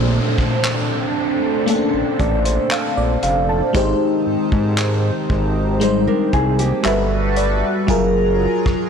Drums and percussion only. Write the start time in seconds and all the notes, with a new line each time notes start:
0.38 kick, cross-stick
0.64 clap, closed hi-hat
1.68 closed hi-hat
2.19 kick, closed hi-hat
2.45 closed hi-hat
2.71 clap, closed hi-hat
3.23 closed hi-hat
3.75 kick, closed hi-hat
4.52 kick
4.78 clap, closed hi-hat
5.30 kick
5.81 closed hi-hat
6.33 kick, closed hi-hat
6.59 closed hi-hat
6.85 clap, closed hi-hat
7.36 closed hi-hat
7.88 kick, closed hi-hat
8.66 kick, cross-stick